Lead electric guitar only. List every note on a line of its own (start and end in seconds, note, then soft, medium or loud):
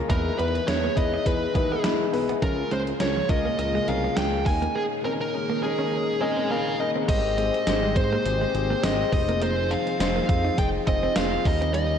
0.10 0.38 A#4 medium
0.38 0.67 B4 medium
0.68 0.98 C#5 loud
0.97 1.24 D#5 medium
1.27 1.81 B4 medium
2.43 2.73 A#4 medium
2.72 2.80 C5 medium
3.01 3.30 C#5 medium
3.30 3.58 D#5 medium
3.59 3.89 D#5 medium
3.88 4.16 F5 loud
4.17 4.46 G5 loud
4.46 4.76 G#5 loud
4.75 4.83 G#4 loud
5.05 5.10 A#4 medium
5.21 5.60 A#4 medium
5.63 6.75 G#4 medium
6.21 6.51 D#5 loud
6.51 6.78 F5 loud
6.80 6.88 D#5 medium
7.09 7.96 D#5 loud
7.97 8.84 C5 medium
8.84 9.12 D#5 medium
9.13 9.43 D#5 medium
9.43 9.72 C5 loud
9.71 10.25 F5 loud
10.29 10.58 F5 loud
10.59 10.66 G5 loud
10.87 11.17 D#5 loud
11.16 11.46 F5 loud
11.46 11.73 D#5 loud
11.74 11.99 D#5 loud